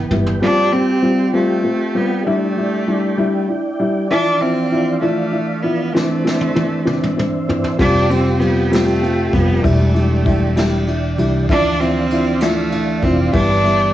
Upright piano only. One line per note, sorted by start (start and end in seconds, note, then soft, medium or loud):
0.11 0.37 G3 medium
0.11 0.37 B3 medium
0.11 0.37 E4 medium
0.42 0.68 G3 medium
0.42 0.68 C4 medium
0.42 0.68 F4 loud
0.72 0.98 G3 medium
0.72 0.98 C4 medium
0.72 0.98 F4 medium
1.02 1.28 G3 medium
1.02 1.29 C4 medium
1.02 1.29 F4 medium
1.33 1.59 G3 medium
1.33 1.60 C4 medium
1.33 1.60 F4 loud
1.63 1.90 C4 medium
1.63 1.90 F4 medium
1.95 2.21 G3 medium
1.95 2.21 C4 medium
1.95 2.21 F4 medium
2.26 2.52 G3 loud
2.26 2.52 D4 medium
2.26 2.52 E4 loud
2.57 2.83 G3 medium
2.57 2.83 D4 medium
2.57 2.83 E4 medium
2.87 3.13 G3 medium
2.87 3.13 D4 medium
2.87 3.14 E4 medium
3.18 3.44 G3 medium
3.18 3.44 D4 medium
3.18 3.44 E4 loud
3.48 3.74 D4 medium
3.48 3.75 E4 medium
3.79 4.05 G3 medium
3.79 4.06 D4 medium
3.79 4.06 E4 medium
4.10 4.36 F3 medium
4.10 4.36 D4 medium
4.10 4.37 E4 loud
4.40 4.67 F3 medium
4.40 4.67 D4 medium
4.40 4.67 E4 medium
4.72 4.98 F3 medium
4.72 4.98 D4 medium
4.72 4.98 E4 medium
5.02 5.28 F3 medium
5.02 5.28 D4 medium
5.02 5.28 E4 loud
5.32 5.58 D4 medium
5.32 5.59 E4 medium
5.63 5.90 F3 medium
5.63 5.90 D4 medium
5.63 5.90 E4 medium
5.94 6.20 E3 loud
5.94 6.21 C4 medium
5.94 6.21 D4 loud
6.25 6.51 E3 medium
6.25 6.51 C4 medium
6.25 6.51 D4 medium
6.55 6.82 E3 medium
6.55 6.82 C4 medium
6.55 6.82 D4 medium
6.85 7.12 E3 medium
6.85 7.12 C4 medium
6.85 7.12 D4 loud
7.17 7.43 C4 medium
7.17 7.44 D4 medium
7.48 7.74 E3 medium
7.48 7.75 C4 medium
7.48 7.75 D4 medium
7.79 8.05 G3 loud
7.79 8.05 C4 medium
7.79 8.05 F4 loud
8.10 8.36 G3 medium
8.10 8.36 C4 medium
8.10 8.36 F4 medium
8.40 8.67 G3 medium
8.40 8.67 C4 medium
8.40 8.67 F4 medium
8.71 8.98 G3 medium
8.71 8.98 C4 medium
8.71 8.98 F4 medium
9.02 9.28 C4 medium
9.02 9.29 F4 medium
9.33 9.59 G3 medium
9.33 9.59 C4 medium
9.33 9.59 F4 medium
9.64 9.90 G3 loud
9.64 9.90 D4 medium
9.64 9.90 E4 loud
9.94 10.20 G3 medium
9.94 10.21 D4 medium
9.94 10.21 E4 medium
10.25 10.51 G3 medium
10.25 10.51 D4 medium
10.25 10.52 E4 loud
10.56 10.82 G3 loud
10.56 10.83 D4 medium
10.56 10.83 E4 loud
10.87 11.13 D4 medium
10.87 11.14 E4 medium
11.18 11.44 G3 medium
11.18 11.44 D4 medium
11.18 11.45 E4 medium
11.49 11.75 F3 loud
11.49 11.75 D4 medium
11.49 11.75 E4 loud
11.80 12.06 F3 medium
11.80 12.06 D4 medium
11.80 12.06 E4 medium
12.11 12.37 F3 medium
12.11 12.37 D4 medium
12.11 12.37 E4 medium
12.41 12.67 F3 medium
12.41 12.67 D4 medium
12.41 12.68 E4 loud
12.73 12.98 D4 medium
12.73 12.99 E4 medium
13.03 13.29 F3 medium
13.03 13.29 D4 medium
13.03 13.29 E4 medium
13.33 13.59 G3 medium
13.33 13.60 B3 medium
13.33 13.60 E4 loud
13.64 13.90 G3 medium
13.64 13.90 B3 medium
13.64 13.90 E4 medium